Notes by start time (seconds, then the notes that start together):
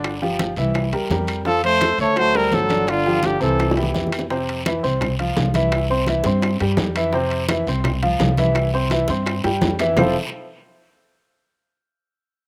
Already playing: G1 D3 D4 D5
0.04 high bongo, high conga, high timbale, long guiro, claves
0.21 F3 F4 G4, high bongo, high conga
0.39 high bongo, high conga, high timbale, short guiro
0.56 C2 E3 E4 E5, high bongo, high conga, short guiro
0.74 high bongo, high conga, high timbale, long guiro, claves
0.92 E2 G3 G4 A#4, high conga, high timbale
1.10 F2 G3 G4 A#4, high bongo, low bongo, high conga, short guiro
1.27 high bongo, high timbale, short guiro, claves
1.45 F3 F4 A4 F5, high bongo, high conga, long guiro
1.63 A3 C5, high bongo, high conga, high timbale
1.81 A3 A4 C5, high bongo, high conga, high timbale, short guiro, claves
1.98 D2 A3 C#5, high bongo, high conga, short guiro
2.16 F#3 A3 F#4 C5 F#5, high bongo, high conga, high timbale, long guiro, claves
2.34 G3 A3 A4 A#4 C5, high conga, high timbale
2.51 G1 F#3 A4, high bongo, low bongo, high conga, low timbale, short guiro
2.69 D3 D4 D5, high bongo, high conga, high timbale, short guiro
2.87 D3 F4, high bongo, high conga, high timbale, long guiro, claves
3.05 F3 F4 G4, high bongo, high conga
3.23 D3 G4, high bongo, high conga, high timbale, short guiro
3.40 C2 C3 E3 C4 A4 C5, high bongo, high conga, short guiro
3.59 high bongo, high conga, high timbale, long guiro, claves
3.71 high bongo
3.77 E3 E4 G4, high conga, high timbale
3.83 low bongo
3.94 F2 E3 E4 G4, low bongo, high conga, short guiro
4.07 low bongo
4.12 high conga, high timbale, short guiro, claves
4.19 low bongo
4.30 C3 C4 C5, high bongo, high conga, long guiro
4.48 high conga, high timbale
4.65 E3 E4 E5, high bongo, high conga, high timbale, low timbale, short guiro, claves
4.83 C2 C4 C5 C6, short guiro
5.01 high bongo, high conga, low conga, high timbale, long guiro, claves
5.19 F3 F4 F5, high conga, high timbale
5.37 C2, high bongo, low bongo, high conga, low timbale, short guiro
5.54 E3 E4 E5, high conga, high timbale, short guiro
5.72 high bongo, high timbale, long guiro, claves
5.89 C4 C5 C6, high bongo, high conga
6.06 E3 E4 E5, high bongo, high conga, high timbale, low timbale, short guiro
6.24 G2 C4 C5 C6, high conga, short guiro
6.42 high bongo, high conga, high timbale, long guiro, claves
6.59 G2 G3 G4 G5, high bongo, high conga, high timbale
6.77 F2, high bongo, low bongo, high conga, low timbale, short guiro
6.95 E3 E4 E5, high bongo, high conga, high timbale, short guiro, claves
7.13 C3 C4 C5, high bongo, high conga, long guiro
7.31 high conga, high timbale
7.49 E3 E4 E5, high bongo, high conga, high timbale, low timbale, short guiro, claves
7.67 C2 C4 C5 C6, short guiro
7.84 high bongo, high conga, low conga, high timbale, long guiro, claves
8.03 F3 F4 F5, high conga, low conga, high timbale
8.20 C2, high bongo, low bongo, high conga, low timbale, short guiro
8.37 E3 E4 E5, high conga, high timbale, short guiro
8.54 high bongo, high conga, high timbale, long guiro, claves
8.72 C4 C5 C6, high bongo, high conga
8.90 E3 E4 E5, high bongo, high conga, high timbale, low timbale, short guiro
9.08 G2 C4 C5 C6, high conga, short guiro
9.26 high bongo, high conga, high timbale, long guiro, claves
9.44 G2 G3 G4 G5, high bongo, high conga, high timbale
9.61 F2, high bongo, high conga, low timbale, short guiro
9.79 E3 E4 E5, low bongo, high timbale, short guiro, claves
9.96 F1 F3 C4 E4 F4 A4 C5, low bongo, low conga, low timbale, long guiro, claves